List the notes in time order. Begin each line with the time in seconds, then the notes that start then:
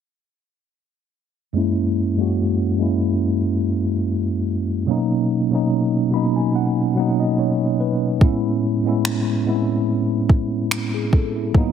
1.53 F#2 G#3 A#3 C#4
1.57 E4
2.17 F#2 G#3 A#3 C#4
2.21 F#4
2.77 F#2 G#3 A#3 C#4
2.82 E4
4.86 B2 F#3 A#3 C#4
4.91 D#4
5.50 B2 F#3 A#3 C#4
5.55 D#4
6.11 B2 F#3 A#3 C#4 B5
6.16 D#4
6.36 G#5
6.55 F#5
6.95 B2 F#3 A#3 C#4 F#5
6.99 D#4
7.20 D#5
7.39 C#5
7.80 B4
8.20 A2 G#3 B3 C#4, kick
8.24 E4
8.84 A2 G#3 B3 C#4
8.89 E4
9.05 finger snap
9.44 A2 G#3 B3 C4
9.49 E4
9.54 C#4
10.29 kick
10.71 finger snap
10.94 G#4
11.13 A4, kick
11.36 E4
11.53 G#2 F#3 A#3 B3, kick
11.58 D#4